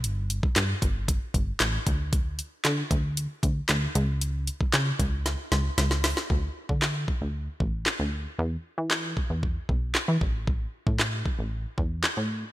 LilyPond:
<<
  \new Staff \with { instrumentName = "Analog synth bass" } { \clef bass \time 4/4 \key a \mixolydian \tempo 4 = 115 g,,4 g,8 g,,4 g,,8 a,,8 d,8~ | d,4 d8 d,4 d,8 d,8 cis,8~ | cis,4 cis8 cis,4 cis,8 cis,4 | d,8 r16 d4 d,8. a,,8. d,8. |
e,8 r16 e4 e,8. b,,8. e16 a,,8~ | a,,8. a,4 a,,8. e,8. a,8. | }
  \new DrumStaff \with { instrumentName = "Drums" } \drummode { \time 4/4 hh8 hh16 bd16 <hc hh sn>8 <hh bd>8 <hh bd>8 <hh bd>8 <hc hh sn>8 <hh bd>8 | <hh bd>8 hh8 <hc hh sn>8 <hh bd>8 hh8 <hh bd>8 <hc hh sn>8 hh8 | hh8 hh16 bd16 <hc hh sn>8 <hh bd>8 <hh sn>8 <hh sn>8 <hh sn>16 sn16 <hho sn>16 sn16 | bd8. bd16 <hc sn>8 bd8 r8 bd8 <hc sn>4 |
r4 <hc sn>8 bd8 bd8 bd8 <hc sn>8 bd8 | bd8. bd16 <hc sn>8 bd8 r8 bd8 <hc sn>4 | }
>>